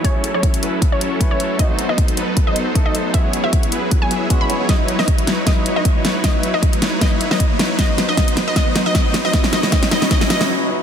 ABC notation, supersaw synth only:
X:1
M:4/4
L:1/16
Q:"Swing 16ths" 1/4=155
K:Bmix
V:1 name="Supersaw synth"
[F,CEAc]3 [F,CEAc]3 [F,CEAB]3 [F,CEAc]3 [F,CEAc]4 | [F,B,DA=c]3 [F,B,DAc]3 [F,B,DAB]3 [F,B,DAc]3 [F,B,DAc]4 | [F,B,EGc]3 [F,B,EGc]3 [F,B,EGB]3 [F,B,EGc] [F,B,EGe]2 [F,B,EGe]2 [F,B,EGc] [F,B,EGc] | [F,DEBc]3 [F,DEBc]3 [F,DEBc]2 [F,DEBc]3 [F,DEBc]3 [F,DEBc]2 |
[F,DEBc]3 [F,DEBc]3 [F,DEBc]2 [F,DEBc]3 [F,DEBc]3 [F,DEBc]2 | [F,DB^B]3 [F,D=B^B] [F,D=B^B]3 [F,D=B^B] [F,D=B^B]3 [F,D=B^B] [F,D=B^B]3 [F,D=B^B] | [F,DEBc]2 [F,DEBc]2 [F,DEBc]2 [F,DEBc]2 [F,DEBc]2 [F,DEBc]2 z4 |]